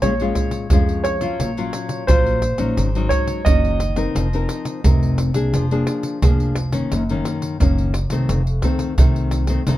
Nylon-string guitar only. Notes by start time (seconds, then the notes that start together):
0.03 A#2 G#3 C#4 F4
0.21 G#3 C#4 F4
0.72 F2 G#3 C#4 F4
1.21 F#3 C#4 F4
1.39 A#2
1.57 F#3 C#4 F4
2.08 A#2 F#3 C#4 F4
2.58 F#3 C#4 D#4
2.78 G#2
2.96 F#3 C#4 D#4
3.46 D#3 F#3 C#4 D#4
3.97 C4 D#4 A#4
4.16 F3
4.34 C4 D#4 A#4
4.85 C3 C4 D#4 A#4
5.34 A#3 D4 G#4
5.54 F3
5.71 A#3 D4 G#4
6.23 F3 A#3 D4 G#4
6.73 D#3 A#3 C#4
6.92 F#2
7.10 D#3 A#3 C#4
7.61 F#2 D#3 A#3 C#4
8.12 D#3 A3 C4
8.30 F2
8.64 D#3 A3 C4
8.98 C3 D#3 A3 C4
9.49 D#3 A3 C4
9.67 F2 D#3 A3 C4